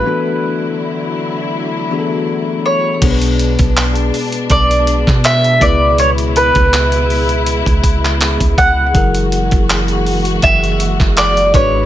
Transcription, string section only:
Already playing: A3
0.06 D3 F#3 E4
3.02 B2 G#3 B3 D4
5.62 E4
8.95 E3 A#3 F#4
11.54 D3 B3 E4

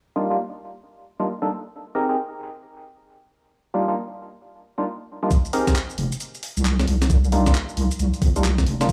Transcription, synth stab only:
0.16 G3 A#3 D4 D#4 F4
0.30 G3 A#3 D4 D#4 F4
1.20 G3 A#3 D4 D#4 F4
1.42 G3 A#3 D4 D#4 A4
1.95 C4 D#4 G4 G#4 A#4
2.09 C4 D#4 G4 G#4 A#4
3.74 G3 A#3 D4 D#4 F4
3.88 G3 A#3 D4 D#4 F4
4.78 G3 A#3 D4 D#4 F4
5.23 G3 A#3 D4 D#4 F4
5.53 C4 D#4 G4 G#4 A#4
5.67 C4 D#4 G4 G#4 A#4
7.32 G3 A#3 D4 D#4 F4
7.47 G3 A#3 D4 D#4 F4
8.36 G3 A#3 D4 D#4 F4
8.81 G3 A#3 D4 D#4 F4

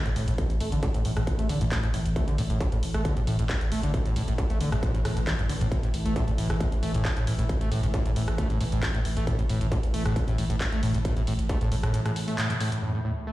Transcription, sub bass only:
0.16 A1
0.28 A1
0.60 A1
0.72 A1
1.05 A1
1.17 A1
1.49 A1
1.61 A1
1.94 A1
2.05 A1
2.38 A1
2.50 A1
2.83 A1
2.94 A1
3.27 A1
3.39 A1
3.72 A1
3.83 A1
4.16 A1
4.28 A1
4.61 A1
4.72 A1
5.05 A1
5.17 A1
5.49 A1
5.61 A1
5.94 A1
6.06 A1
6.38 A1
6.50 A1
6.83 A1
6.94 A1
7.27 A1
7.39 A1
7.72 A1
7.83 A1
8.16 A1
8.28 A1
8.61 A1
8.72 A1
9.05 A1
9.17 A1
9.49 A1
9.61 A1
9.94 A1
10.05 A1
10.38 A1
10.50 A1
10.83 A1
10.94 A1
11.27 A1
11.39 A1
11.72 A1
11.83 A1

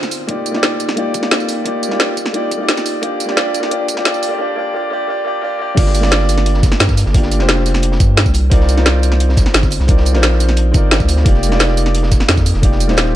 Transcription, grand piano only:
Already playing: C4 D#4 F4 A#4 C5 D5
0.27 A#3 D#4 F4 G4 D5
0.51 A#3 D#4 F4
0.56 G4 D5
0.96 A#3 D#4 F4 G4 D5
1.20 A#3 D#4 F4
1.24 G4 D5
1.64 A#3 D#4 F4 G4 D5
1.88 A#3 D#4 F4
1.93 G4 D5
2.33 A#3 D#4 F4 G4 D5
2.57 A#3 D#4 F4
2.62 G4 D5
3.01 A#3 D4 F4 G4 D5
3.26 A#3 D4 F4
3.30 G4 D5
3.35 A#3 D4 F4 G4 D5
3.60 A#3 D4 F4
3.64 G4 D5
3.70 A#3 D4 F4 G4 D5
3.94 A#3 D4 F4
3.99 G4 D5
4.04 A#3 D4 F4 G4 D5
4.28 A#3 D4 F4
4.33 G4 D5
4.38 A#3 D4 F4 G4 D5
4.56 A#3 D4 F4 G4 D5
4.73 A#3 D4 F4 G4 D5
4.90 A#3 D4 F4 G4 D5
5.07 A#3 D4 F4 G4 D5
5.24 A#3 D4 F4 G4 D5
5.41 A#3 D4 F4 G4 D5
5.59 A#3 D4 F4 G4 D5
5.76 A#3 D4 F4 G4 D5
6.00 A#3 D4 F4
6.05 G4 D5
7.13 A#3 D4 F4 G4 D5
7.39 A#3 D4 F4 G4 C5
8.50 C4 D#4 F4 A#4 D5
8.74 C4 D#4 F4
8.79 A#4 D5
9.87 C4 D#4 F4 A#4 D5
10.13 C4 D#4 F4 A#4 C5
10.72 C4 D#4 F4
10.76 A#4 D5
11.24 A#3 D#4 F4 G4 D5
11.49 A#3 D#4 F4
11.53 G4 D5
12.62 A#3 D#4 F4 G4 D5
12.88 A#3 D#4 F4 G4 C5

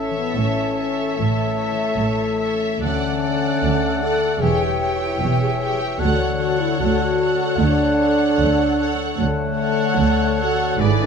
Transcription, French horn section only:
Already playing: C#4
0.17 B3
0.38 C#4
1.17 A3
2.84 C#4
4.03 A4
4.39 G#4
4.62 G4
5.00 E4
5.21 G4
5.41 G#4
5.81 G4
6.00 F#4
6.60 E4
6.79 F#4
7.62 D4
9.22 A3
10.43 F#4
10.82 E4
11.03 D4

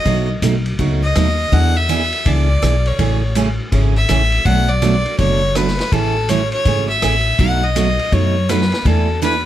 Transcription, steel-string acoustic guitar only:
0.06 B2 F#3 A3 D#4 F#4
0.42 B2 F#3 A3 D#4 F#4
0.79 B2 F#3 A3 D#4 F#4
1.16 B2 F#3 A3 D#4 F#4
1.52 E3 B3 D4 G#4
1.89 E3 B3 D4 G#4
2.25 E3 B3 D4 G#4
2.62 E3 B3 D4 G#4
2.99 C#3 E3 A3 C#4 G#4
3.35 C#3 E3 A3 C#4 G#4
3.72 C#3 E3 A3 C#4 G#4
4.09 C#3 E3 A3 C#4 G#4
4.45 B2 F#3 A3 D4 F#4
4.82 B2 F#3 A3 D4 F#4
5.18 B2 F#3 A3 D4 F#4
5.55 B2 F#3 A3 D4 F#4
5.92 C#3 E3 A3 C#4 G#4
6.29 C#3 E3 A3 C#4 G#4
6.65 C#3 E3 A3 C#4 G#4
7.02 C#3 E3 A3 C#4 G#4
7.39 B2 F#3 A3 D#4 F#4
7.76 B2 F#3 A3 D#4 F#4
8.12 B2 F#3 A3 D#4 F#4
8.49 B2 F#3 A3 D#4 F#4
8.85 E3 A3 D4 E4 A4
9.22 E3 A3 D4 E4 A4

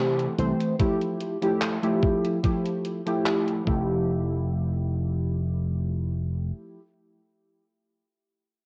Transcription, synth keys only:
Already playing: E3 A3 C4 G4
0.38 E3 A3 C4 C5
0.78 F3 A3 E4 G4
1.41 F3 A3 E4 G4
1.82 F3 A3 E4 G4
2.43 F3 A3 E4 G4
3.06 F3 A3 E4 G4
3.65 F3 A3 E4
3.69 G4

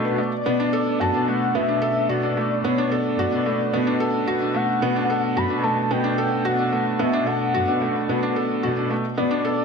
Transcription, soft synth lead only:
0.18 D5
1.00 A5
1.27 F#5
1.55 E5
2.09 D5
2.64 C#5
2.91 D5
4.56 F#5
5.37 B5
5.63 A5
5.91 G5
6.46 F#5
7.00 E5
7.27 F#5
9.17 D5

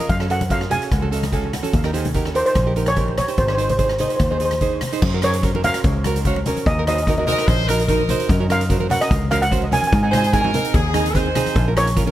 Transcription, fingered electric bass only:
0.09 F#2
0.92 C#2
1.74 D#2
2.56 A#1
3.38 G#1
4.20 D#2
5.02 F#2
5.84 C#2
6.67 D#2
7.48 A#1
8.30 F#2
9.11 C#2
9.93 G#2
10.74 D#2
11.56 A#1

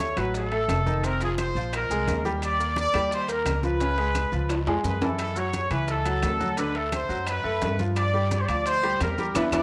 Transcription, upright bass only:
Already playing: D2
0.17 A1
0.68 F1
1.55 A#1
1.90 C2
2.07 D#2
2.94 D#2
3.45 C#2
4.32 C#2
4.66 F2
4.83 F#2
5.70 C#2
6.22 D2
7.09 F#2
7.43 F#2
7.61 G2
8.48 D2
9.00 E2
9.35 E2
9.52 E2

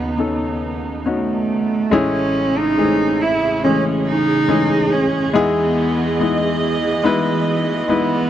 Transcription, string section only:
Already playing: D#2 C#3 B3 D#4
1.92 C#3 C#4 G#4
5.34 E3 D#5

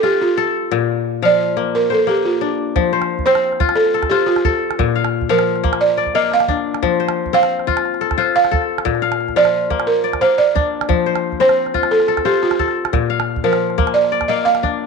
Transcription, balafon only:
0.04 G4
0.21 F4
1.25 D5
1.75 A#4
1.92 A4
2.09 G4
2.25 F4
3.26 C5
3.75 A4
4.10 G4
4.26 F4
5.30 A#4
5.81 D5
6.15 D#5
6.34 F5
7.34 F5
8.36 F5
9.37 D5
9.87 A#4
10.21 C5
10.38 D5
11.41 C5
11.91 A4
12.25 G4
12.43 F4
13.44 A#4
13.94 D5
14.28 D#5
14.45 F5

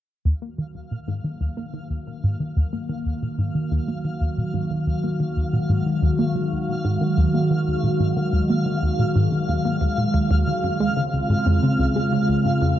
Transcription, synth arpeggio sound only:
0.25 D#2
0.42 A#3
0.58 D#3
0.75 D#2
0.91 A#2
1.08 G#2
1.24 D#3
1.41 D#2
1.57 A#3
1.74 D#3
1.90 D#2
2.07 A#2
2.24 G#2
2.40 D#3
2.57 D#2
2.73 A#3
2.89 D#3
3.06 D#2
3.22 A#2
3.38 G#2
3.55 D#3
3.71 D#2
3.88 A#3
4.04 D#3
4.21 D#2
4.38 A#2
4.54 G#2
4.71 D#3
4.87 D#2
5.04 A#3
5.20 D#3
5.37 D#2
5.53 A#2
5.69 G#2
5.86 D#3
6.02 D#2
6.19 A#3
6.35 D#3
6.52 D#2
6.68 A#2
6.85 G#2
7.01 D#3
7.18 D#2
7.34 A#3
7.51 D#3
7.67 D#2
7.84 A#2
8.00 G#2
8.17 D#3
8.33 D#2
8.50 A#3
8.66 D#3
8.83 D#2
8.99 A#2
9.16 G#2
9.32 D#3
9.49 D#2
9.65 A#3
9.81 D#2
9.98 A#2
10.14 D#2
10.31 D#2
10.48 D#3
10.64 F#2
10.81 G#3
10.97 C#3
11.14 C#2
11.30 G#2
11.47 F2
11.63 C#3
11.80 C#2
11.96 G#3
12.13 C#3
12.29 C#2
12.46 G#2
12.62 F2

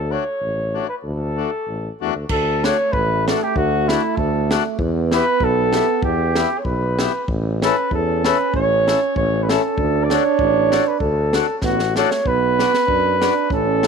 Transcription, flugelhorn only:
Already playing: A4
0.12 C#5
0.88 B4
1.03 A4
2.30 A4
2.65 C#5
2.92 B4
3.28 A4
3.43 G4
3.57 F#4
3.88 E4
4.17 A4
5.15 B4
5.44 A4
6.04 G4
6.59 C#5
6.65 B4
7.64 B4
7.94 A4
8.26 B4
8.55 C#5
9.17 C#5
9.43 B4
9.51 A4
10.04 D5
10.11 C#5
10.88 B4
11.00 A4
11.64 F#4
11.97 C#5
12.27 B4
13.53 A4

